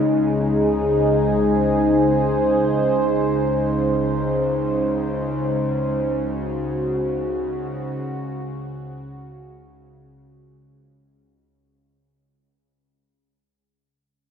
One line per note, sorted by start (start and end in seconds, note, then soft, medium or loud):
0.00 12.26 C#2 medium
0.00 12.25 C#3 medium
0.00 12.15 G#3 medium
0.00 12.16 D#4 medium
0.00 5.97 G#4 medium
0.00 12.19 G#4 medium
0.00 12.16 C5 medium
5.67 12.15 F#4 medium